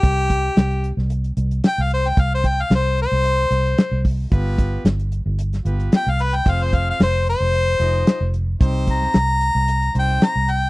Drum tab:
HH |x-x-xxx-xxxxx-x-|x-x-x-x-x-xxx-o-|x-x-xxx-xxxxx-x-|x-x-x-x-x-xxx-x-|
SD |----o--o----o---|----o--o----o---|----o----o--o---|----o-------o---|
BD |o-o-------------|o-o-----------o-|o-o-------------|o-o-------------|

HH |x-x-xxx-xxxxx-x-|
SD |---oo-------o---|
BD |o-o-------------|